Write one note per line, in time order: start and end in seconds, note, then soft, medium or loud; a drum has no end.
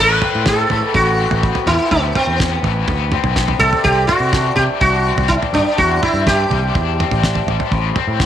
0.00 0.18 A1 medium
0.00 1.20 A2 medium
0.00 0.44 B4 loud
0.00 3.58 B4 medium
0.00 3.57 A5 medium
0.00 3.57 B5 medium
0.22 1.18 C4 medium
0.22 floor tom medium
0.22 mid tom medium
0.35 0.64 A2 medium
0.46 0.94 B3 medium
0.46 0.95 A4 medium
0.46 kick loud
0.46 snare medium
0.46 floor tom medium
0.46 mid tom medium
0.70 0.81 A2 medium
0.70 1.68 E3 medium
0.70 floor tom medium
0.94 1.24 A1 medium
0.94 1.42 B3 medium
0.94 1.70 F#4 medium
0.94 kick medium
0.94 floor tom medium
1.19 2.17 C4 medium
1.31 1.50 A1 medium
1.31 floor tom medium
1.43 2.39 B3 medium
1.43 kick loud
1.55 floor tom medium
1.66 1.77 E2 medium
1.66 2.64 E3 medium
1.66 1.91 E4 medium
1.66 floor tom medium
1.91 2.11 D2 medium
1.91 3.13 A2 medium
1.91 2.15 B3 medium
1.91 kick medium
1.91 floor tom medium
2.15 2.61 C4 medium
2.15 3.12 C4 medium
2.15 floor tom medium
2.15 mid tom medium
2.27 2.57 E2 medium
2.40 2.88 B3 medium
2.40 kick loud
2.40 snare medium
2.40 floor tom medium
2.40 mid tom medium
2.63 2.83 A1 medium
2.63 4.36 E3 medium
2.63 floor tom medium
2.88 3.17 D2 medium
2.88 3.37 B3 medium
2.88 kick medium
2.88 floor tom medium
3.12 4.09 C4 medium
3.12 mid tom medium
3.24 3.53 B1 medium
3.24 floor tom medium
3.36 3.62 B3 medium
3.36 kick loud
3.36 snare medium
3.48 floor tom medium
3.59 3.69 C2 medium
3.59 3.86 C3 medium
3.59 3.83 A4 loud
3.59 7.68 D5 medium
3.59 7.68 E5 medium
3.59 7.68 C6 medium
3.59 floor tom medium
3.73 floor tom medium
3.84 4.04 C2 medium
3.84 5.06 C3 medium
3.84 4.07 G4 loud
3.84 kick medium
3.84 floor tom medium
4.07 5.05 C4 medium
4.07 4.53 F#4 medium
4.07 floor tom medium
4.07 mid tom medium
4.20 4.50 C3 medium
4.33 4.80 D4 medium
4.33 kick loud
4.33 snare medium
4.33 floor tom medium
4.33 mid tom medium
4.56 4.66 C3 medium
4.56 5.54 G3 medium
4.56 4.62 G4 medium
4.56 floor tom medium
4.81 5.11 C2 medium
4.81 5.29 D4 medium
4.81 5.26 F#4 medium
4.81 kick medium
4.81 floor tom medium
5.06 6.02 C4 medium
5.16 5.36 C2 medium
5.16 floor tom medium
5.28 6.26 D4 medium
5.28 5.35 E4 medium
5.28 kick loud
5.43 floor tom medium
5.53 5.63 G2 medium
5.53 6.49 G3 medium
5.53 5.79 D4 medium
5.53 floor tom medium
5.78 5.98 E2 medium
5.78 7.00 C3 medium
5.78 6.02 F#4 medium
5.78 kick medium
5.78 floor tom medium
6.02 6.99 C4 medium
6.02 6.26 E4 medium
6.02 floor tom medium
6.02 mid tom medium
6.14 6.43 G2 medium
6.27 6.74 D4 medium
6.27 7.44 G4 medium
6.27 kick loud
6.27 snare medium
6.27 floor tom medium
6.27 mid tom medium
6.50 6.70 C2 medium
6.50 7.47 G3 medium
6.50 floor tom medium
6.75 7.04 E2 medium
6.75 7.23 D4 medium
6.75 kick medium
6.75 floor tom medium
6.99 7.96 C4 medium
6.99 mid tom medium
7.11 7.41 A1 medium
7.11 floor tom medium
7.23 7.72 D4 medium
7.23 kick medium
7.23 snare medium
7.35 floor tom medium
7.47 7.57 A1 medium
7.47 7.72 G3 medium
7.47 floor tom medium
7.60 floor tom medium
7.70 7.91 A1 medium
7.70 8.26 A2 medium
7.70 8.26 A5 soft
7.70 8.26 B5 medium
7.70 8.26 C6 medium
7.70 kick medium
7.70 floor tom medium
7.96 8.26 C4 medium
7.96 floor tom medium
7.96 mid tom medium
8.08 8.26 A2 medium
8.20 8.26 B3 medium
8.20 kick loud
8.20 snare medium
8.20 floor tom medium
8.20 mid tom medium